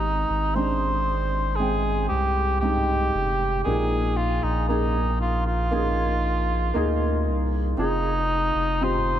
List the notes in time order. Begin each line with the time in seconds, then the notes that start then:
Already playing: G#1 G#2 G#3 C4 D#4 G4
0.30 G#1
0.55 G#3 C4 D4 C5
1.56 G#3 G#4
1.60 C4 G5
2.09 C2 G4
2.60 G#3 C4 D#4 G4
3.14 F1
3.64 A#1 A#2 A#3 D#4 G#4
4.17 F4
4.43 A#1 D#4
4.68 A#3 D#4 G#4
5.21 F4
5.47 F4
5.71 A#3 D#4 G#4
6.74 D2 A#3 D#4 G#4
7.27 C2
7.77 F1 C4 D#4 F4 G#4
8.55 F1
8.81 C4 F4 G4 C5